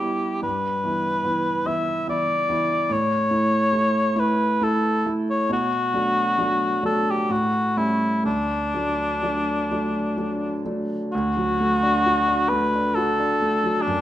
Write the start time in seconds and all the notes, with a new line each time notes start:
Already playing: B3 E4 G4
0.00 G3 B3 E4
0.42 G2 B4
0.84 E3 B3 E4
1.24 E3 B3 E4
1.65 E3 B3 E4 E5
2.07 E3 B3 E4 D5
2.49 E3 B3 E4
2.89 A2 C#5
3.31 A3 E4
3.73 A3 E4
4.16 A3 E4 B4
4.61 A3 E4 A4
5.06 A3 E4
5.30 C#5
5.49 B2 F#4
5.94 F#3 A3 D4
6.39 F#3 A3 D4
6.82 F#3 A3 D4 A4
7.10 G4
7.30 A2 F#4
7.76 G3 A3 C#4 E4
8.24 D2 D4
8.74 F#3 A3 D4
9.23 F#3 A3 D4
9.71 F#3 A3 D4
10.18 F#3 A3 D4
10.65 F#3 A3 D4
11.13 D2 F#4
11.37 F#3
11.60 A3
11.83 D4
12.06 F#4
12.28 D4
12.49 A3 B4
12.75 D4
12.95 F#4 A4
13.19 D4
13.42 A3
13.64 F#3
13.82 D4
13.87 F#2